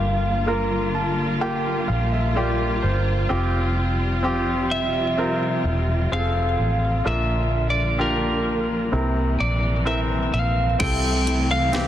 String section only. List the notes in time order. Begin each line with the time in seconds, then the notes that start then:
Already playing: D3 G3 A#3 F4
3.29 C3 F3 G3
7.05 D3 A#3
8.92 C3 E3 G3
10.79 C3 E3 G3 A3